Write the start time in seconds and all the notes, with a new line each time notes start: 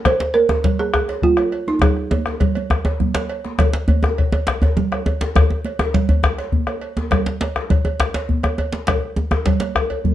0.05 C5, bombo rim, bombo low, cowbell, djembe tone, djembe bass, low conga
0.20 djembe slap
0.34 A#4, cowbell, djembe slap, high conga
0.49 bombo rim, djembe slap, djembe tone
0.64 bombo low, cowbell, djembe slap, low conga
0.79 G#4, cowbell, high conga
0.94 G#4, bombo rim, djembe slap, djembe bass
1.08 bombo rim, cowbell, djembe slap
1.22 F4, bombo low, high conga, low conga
1.37 bombo rim, cowbell, djembe tone
1.52 cowbell
1.67 D#4, djembe slap, high conga
1.82 G#4, bombo rim, bombo low, cowbell, djembe slap, djembe tone, high conga, low conga, djembe bass
1.97 bombo rim, high conga
2.11 cowbell, djembe slap, djembe tone, high conga
2.26 bombo rim, djembe slap, djembe tone
2.40 bombo low, cowbell, djembe slap, djembe tone, low conga
2.55 cowbell, djembe slap, high conga
2.70 bombo rim, djembe slap, djembe tone, djembe bass
2.85 cowbell, djembe slap, djembe tone
3.00 bombo rim, bombo low, high conga, low conga
3.14 bombo rim, cowbell, djembe slap, djembe tone
3.29 cowbell
3.44 bombo rim, djembe slap, high conga
3.59 bombo rim, bombo low, cowbell, djembe tone, djembe bass, low conga
3.73 djembe slap
3.88 cowbell, djembe slap, high conga, djembe bass
4.03 bombo rim, djembe slap, djembe tone
4.04 djembe tone
4.18 bombo low, cowbell
4.32 cowbell, djembe tone
4.47 bombo rim, djembe slap
4.49 djembe slap, djembe bass
4.62 bombo rim, cowbell, djembe slap, djembe bass
4.77 bombo low, djembe tone, high conga, low conga
4.92 bombo rim, cowbell, djembe tone
5.06 cowbell, djembe tone
5.21 djembe slap, high conga
5.35 bombo rim, bombo low, cowbell, low conga, djembe bass
5.50 djembe tone
5.65 cowbell, djembe slap, high conga
5.79 bombo rim, djembe slap, djembe tone
5.94 bombo low, cowbell, djembe slap, low conga
6.09 cowbell, high conga, djembe bass
6.23 bombo rim, djembe slap, djembe tone, djembe bass
6.38 bombo rim, cowbell, djembe slap
6.52 bombo low, high conga
6.67 bombo rim, cowbell, djembe tone
6.81 cowbell
6.97 djembe slap, djembe tone, high conga
7.11 bombo rim, bombo low, cowbell, djembe tone, djembe bass, low conga
7.26 djembe slap
7.41 cowbell, djembe slap, high conga
7.56 bombo rim, djembe slap, djembe tone
7.70 bombo low, cowbell, djembe tone, low conga
7.85 cowbell, djembe tone, high conga
8.00 bombo rim, djembe slap, djembe bass
8.14 bombo rim, cowbell, djembe slap
8.29 bombo low, high conga
8.43 bombo rim, cowbell, djembe tone
8.58 cowbell, djembe tone
8.72 djembe slap, high conga
8.87 bombo rim, bombo low, cowbell, djembe slap, low conga, djembe bass
9.16 djembe slap, djembe tone, high conga
9.31 bombo rim, djembe slap, djembe tone, high conga
9.46 bombo low, cowbell, djembe slap, low conga
9.60 cowbell, djembe slap, high conga
9.75 bombo rim, djembe bass
9.90 cowbell, djembe bass
10.04 bombo low, high conga, djembe bass, low conga